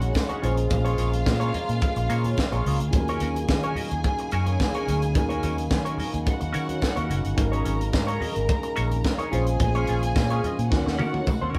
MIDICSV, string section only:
0, 0, Header, 1, 2, 480
1, 0, Start_track
1, 0, Tempo, 555556
1, 614, Time_signature, 4, 2, 24, 8
1, 10009, End_track
2, 0, Start_track
2, 0, Title_t, "String section"
2, 0, Program_c, 0, 48
2, 0, Note_on_c, 0, 66, 91
2, 0, Note_on_c, 0, 78, 87
2, 339, Note_off_c, 0, 78, 0
2, 342, Note_off_c, 0, 66, 0
2, 364, Note_on_c, 0, 65, 98
2, 365, Note_on_c, 0, 77, 107
2, 2497, Note_off_c, 0, 65, 0
2, 2497, Note_off_c, 0, 77, 0
2, 2530, Note_on_c, 0, 80, 102
2, 2533, Note_on_c, 0, 68, 84
2, 5379, Note_off_c, 0, 80, 0
2, 5380, Note_off_c, 0, 68, 0
2, 5414, Note_on_c, 0, 66, 79
2, 5414, Note_on_c, 0, 78, 93
2, 6356, Note_off_c, 0, 66, 0
2, 6356, Note_off_c, 0, 78, 0
2, 6371, Note_on_c, 0, 70, 89
2, 6377, Note_on_c, 0, 82, 88
2, 8019, Note_off_c, 0, 70, 0
2, 8022, Note_off_c, 0, 82, 0
2, 8053, Note_on_c, 0, 68, 98
2, 8056, Note_on_c, 0, 80, 112
2, 9230, Note_off_c, 0, 68, 0
2, 9231, Note_off_c, 0, 80, 0
2, 9252, Note_on_c, 0, 78, 90
2, 9253, Note_on_c, 0, 66, 79
2, 10009, Note_off_c, 0, 66, 0
2, 10009, Note_off_c, 0, 78, 0
2, 10009, End_track
0, 0, End_of_file